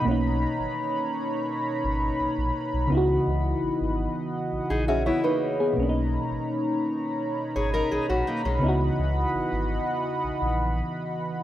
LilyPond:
<<
  \new Staff \with { instrumentName = "Analog synth pad" } { \time 4/4 \key b \major \tempo 4 = 84 << { b''1~ | b''1 | b''1~ | b''1 | } \\ { <dis' cis'' ais''>1 | <e dis'' fis''>1 | <dis' cis'' ais''>1 | <e dis'' fis''>1 | } >> }
  \new Staff \with { instrumentName = "FM electric piano" } { \time 4/4 \key b \major << { r1 | r2 r8. <gis' e''>16 <e' cis''>16 <dis' b'>8 <b gis'>16~ | <b gis'>16 r2. r8. | r1 | } \\ { <b, ais cis' dis'>1 | <cis b dis' e' fis'>1 | <b, ais cis' d' dis'>1 | <cis b dis' e' fis'>1 | } >> }
  \new Staff \with { instrumentName = "Steel-string acoustic guitar" } { \time 4/4 \key b \major r1 | r2 r8 <dis' gis'>16 <cis' fis'>16 <b e'>16 <ais dis'>8. | r2 r8 <gis' cis''>16 <dis' ais'>16 <dis' gis'>16 <cis' fis'>16 <ais dis'>16 <gis cis'>16~ | <gis cis'>16 r2. r8. | }
  \new Staff \with { instrumentName = "Sub bass" } { \clef bass \time 4/4 \key b \major b,,8. gis,,16 r4. gis,,8 ais,,16 ais,,16 r16 b,,16 | cis,8 cis,8 gis,,16 gis,,8 r8 ais,,16 ais,,8. r8. | b,,8. gis,,16 r4. gis,,8 ais,,16 ais,,16 r16 b,,16 | cis,8 cis,8 gis,,16 gis,,8 r8 ais,,16 ais,,8. r8. | }
>>